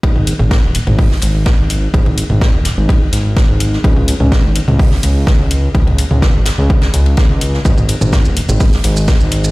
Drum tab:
RD |x-x-x-xx--x-x-x-|xxx-x-x-x-x-x-x-|x-x-x-xx--x-x-x-|xxx-x-x-xx-xx-x-|
HH |--o---o-o-o---o-|--o---o---o---o-|--o---o-o-o---o-|--o---o---o---o-|
SH |----------------|----------------|----------------|----------------|
SD |----o----o--o---|----o-o---o-o--o|----o----o--o---|----o-o--o--o--o|
T2 |-o-o---o--------|-o-o------------|-o-o---o--------|-o-o------------|
BD |o---o---o---o---|o---o---o---o---|o---o---o---o---|o---o---o---o---|

RD |x-x-x-xx--x-x-x-|
HH |--o---o-o-o---o-|
SH |xx-xxx-xxx-xxx-x|
SD |----o----o--o---|
T2 |-o-o---o--------|
BD |o---o---o---o---|